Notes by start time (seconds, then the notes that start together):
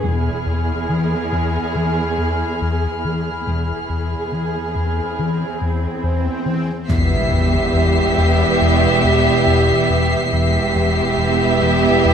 0.03 E1 E2 G#4 B5 F6
0.46 E2
0.89 E3
1.32 E2
1.75 E3
2.18 E2
2.61 E2
3.04 E3
3.47 E1 E2 G#4, swell
3.90 E2
4.32 E3
4.75 E2
5.19 E3
5.61 E2
6.04 E2
6.46 E3
6.88 E1 E2 E3 G3 B3 G4 E5 B6 C7, impact
7.32 E2
7.74 E2
8.18 E2
8.61 E2
9.04 E2
9.46 E2
9.90 E2
10.31 E1 E2 E3 G3 B3 G4 E5
10.76 E2
11.18 E2
11.62 E2
12.05 E2